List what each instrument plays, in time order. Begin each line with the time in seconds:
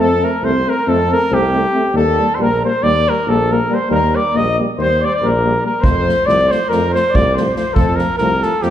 Already playing: tuba F2
0.00 flugelhorn A4, cornet A4
0.21 euphonium A3 C4, cornet A#4
0.25 flugelhorn A#4
0.42 tuba C2, euphonium A3 C4, cornet C5, flugelhorn C5
0.65 euphonium A3 C4, cornet A#4
0.70 flugelhorn A#4
0.87 tuba F2, euphonium A3 C4, cornet A4, flugelhorn A4
1.10 euphonium A3 C4, cornet A#4, flugelhorn A#4
1.30 tuba C2, euphonium A3 C4, cornet G4
1.35 flugelhorn G4
1.53 euphonium A3 C4
1.74 euphonium A3 C4
1.94 tuba D#2, euphonium G3 A#3, flugelhorn A4
1.98 cornet A4
2.18 euphonium G3 A#3
2.35 tuba A#1, euphonium G3, cornet C5, flugelhorn C5
2.39 euphonium A#3, cornet A#4, flugelhorn A#4
2.62 euphonium G3 A#3, flugelhorn C5, cornet C5
2.83 tuba D#2, euphonium G3 A#3, cornet D5, flugelhorn D5
3.07 euphonium G3 A#3, cornet A#4, flugelhorn A#4
3.27 tuba A#1, euphonium G3 A#3, cornet A4
3.31 flugelhorn A4
3.49 euphonium G3 A#3, cornet A#4
3.55 flugelhorn A#4
3.69 euphonium G3 A#3
3.74 cornet C5, flugelhorn C5
3.89 tuba D#2, euphonium G3 A#3, cornet A#4
3.95 flugelhorn A#4
4.14 euphonium G3 A#3, cornet D5, flugelhorn D5
4.33 tuba A#1, euphonium G3 A#3, cornet D#5, flugelhorn D#5
4.58 euphonium G3 A#3
4.77 tuba D#2, euphonium G3 A#3, flugelhorn C5, cornet C5
5.02 euphonium G3 A#3, flugelhorn D5, cornet D5
5.08 flugelhorn C5 D5, cornet C5
5.15 cornet D5
5.21 tuba A#1, euphonium G3 A#3, flugelhorn A#4
5.25 cornet A#4
5.44 euphonium G3 A#3
5.62 euphonium G3 A#3, flugelhorn A#4, cornet A#4
5.81 tuba F2, euphonium F3 A3, flugelhorn C5, cornet C5, kick
6.05 euphonium F3 A3, snare
6.26 tuba C2, euphonium F3 A3, flugelhorn D5, cornet D5, snare
6.48 euphonium A3, flugelhorn C5, cornet C5, snare
6.53 euphonium F3
6.68 tuba F2, euphonium F3 A3, flugelhorn A#4, cornet A#4, snare
6.91 euphonium F3 A3, flugelhorn C5, cornet C5
6.96 snare
7.10 euphonium F3, flugelhorn D5
7.14 tuba C2, euphonium A3, cornet D5, kick
7.33 euphonium A3, flugelhorn C5, cornet C5, snare
7.38 euphonium F3
7.54 euphonium F3 A3, flugelhorn C5, cornet C5, snare
7.73 tuba F2, euphonium F3 A3, flugelhorn A4, cornet A4, kick
7.96 euphonium F3, flugelhorn A#4, cornet A#4, snare
8.00 euphonium A3
8.17 tuba C2, euphonium F3 A3, flugelhorn A#4, cornet A#4, snare
8.41 euphonium F3 A3, flugelhorn A4, cornet A4, snare
8.61 tuba F2, euphonium F3 A3, flugelhorn G4, cornet G4, snare